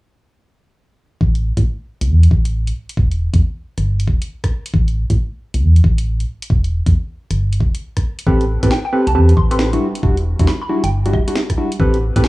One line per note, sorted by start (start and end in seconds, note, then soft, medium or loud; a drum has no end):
1.21 1.52 A1 loud
1.21 kick loud
1.35 closed hi-hat soft
1.57 1.63 A2 medium
1.57 kick loud
1.57 closed hi-hat medium
2.01 2.11 C2 medium
2.01 closed hi-hat medium
2.09 2.28 E2 loud
2.23 closed hi-hat soft
2.31 2.72 A1 medium
2.31 kick loud
2.45 closed hi-hat medium
2.67 closed hi-hat medium
2.89 closed hi-hat medium
2.97 3.28 E1 loud
2.97 kick loud
3.12 closed hi-hat soft
3.34 3.40 E2 medium
3.34 kick loud
3.34 closed hi-hat medium
3.78 4.09 G1 medium
3.78 cross-stick soft
3.78 closed hi-hat medium
4.00 closed hi-hat soft
4.08 4.18 D1 medium
4.08 kick loud
4.22 closed hi-hat medium
4.44 kick medium
4.44 cross-stick medium
4.44 closed hi-hat soft
4.66 closed hi-hat medium
4.74 5.05 A1 loud
4.74 kick loud
4.88 closed hi-hat soft
5.10 5.16 A2 medium
5.10 kick loud
5.10 closed hi-hat medium
5.54 5.64 C2 medium
5.54 closed hi-hat medium
5.62 5.80 E2 medium
5.76 closed hi-hat soft
5.84 6.25 A1 medium
5.84 kick loud
5.98 closed hi-hat medium
6.20 closed hi-hat soft
6.42 closed hi-hat medium
6.50 6.81 E1 loud
6.50 kick loud
6.64 closed hi-hat soft
6.86 6.92 E2 medium
6.86 kick loud
6.86 closed hi-hat medium
7.31 7.62 G1 medium
7.31 cross-stick soft
7.31 closed hi-hat medium
7.53 closed hi-hat soft
7.60 7.71 D1 medium
7.60 kick loud
7.75 closed hi-hat medium
7.97 kick medium
7.97 cross-stick medium
7.97 closed hi-hat soft
8.19 closed hi-hat medium
8.27 8.58 A1 medium
8.27 8.45 C4 medium
8.27 8.45 G4 medium
8.27 8.45 A4 medium
8.27 8.45 B4 loud
8.27 kick loud
8.41 closed hi-hat soft
8.63 8.69 A2 medium
8.63 8.70 C4 loud
8.63 8.70 G4 medium
8.63 8.70 A4 medium
8.63 8.70 B4 loud
8.63 kick loud
8.63 closed hi-hat medium
8.71 8.80 G5 medium
8.71 snare loud
8.85 8.90 G5 medium
8.93 9.06 C4 medium
8.93 9.06 G4 medium
8.93 9.06 A4 medium
8.93 9.06 B4 medium
9.07 9.16 C2 medium
9.07 9.13 A5 medium
9.07 closed hi-hat medium
9.15 9.33 E2 loud
9.15 9.33 C4 medium
9.15 9.33 G4 medium
9.15 9.33 A4 medium
9.15 9.33 B4 medium
9.15 9.35 A5 medium
9.29 closed hi-hat soft
9.37 9.78 A1 medium
9.37 9.46 C6 medium
9.37 kick loud
9.51 9.70 C4 medium
9.51 9.70 G4 medium
9.51 9.70 A4 medium
9.51 9.70 B4 loud
9.51 9.56 C6 medium
9.51 closed hi-hat medium
9.59 snare loud
9.73 9.88 G3 medium
9.73 9.88 D4 medium
9.73 9.88 E4 medium
9.73 9.88 F#4 medium
9.73 closed hi-hat medium
9.95 closed hi-hat medium
10.03 10.34 E1 loud
10.03 10.16 G3 medium
10.03 10.16 D4 medium
10.03 10.16 E4 medium
10.03 10.16 F#4 medium
10.03 kick loud
10.17 closed hi-hat soft
10.39 10.45 E2 medium
10.39 10.47 G3 medium
10.39 10.47 D4 medium
10.39 10.47 E4 medium
10.39 10.47 F#4 loud
10.39 kick medium
10.39 closed hi-hat medium
10.47 10.56 B5 medium
10.47 snare loud
10.61 10.67 B5 medium
10.69 10.82 G3 medium
10.69 10.82 D4 medium
10.69 10.82 E4 medium
10.69 10.82 F#4 medium
10.84 11.15 G1 medium
10.84 11.12 G5 medium
10.84 cross-stick soft
10.84 closed hi-hat medium
11.06 11.20 G3 medium
11.06 11.20 D4 medium
11.06 11.20 E4 medium
11.06 11.20 F#4 medium
11.06 closed hi-hat medium
11.13 11.24 D1 medium
11.13 11.58 E5 medium
11.13 kick loud
11.28 11.35 G3 medium
11.28 11.35 D4 medium
11.28 11.35 E4 medium
11.28 11.35 F#4 medium
11.28 closed hi-hat medium
11.35 snare loud
11.50 kick medium
11.50 cross-stick medium
11.50 closed hi-hat medium
11.58 11.71 G3 medium
11.58 11.71 D4 medium
11.58 11.71 E4 medium
11.58 11.71 F#4 medium
11.72 closed hi-hat medium
11.80 12.11 A1 medium
11.80 11.98 C4 loud
11.80 11.98 G4 medium
11.80 11.98 A4 medium
11.80 11.98 B4 loud
11.80 kick loud
11.94 closed hi-hat soft
12.16 12.22 A2 medium
12.16 12.23 C4 loud
12.16 12.23 G4 medium
12.16 12.23 A4 medium
12.16 12.23 B4 loud
12.16 kick loud
12.16 closed hi-hat medium
12.24 12.28 G5 medium
12.24 snare loud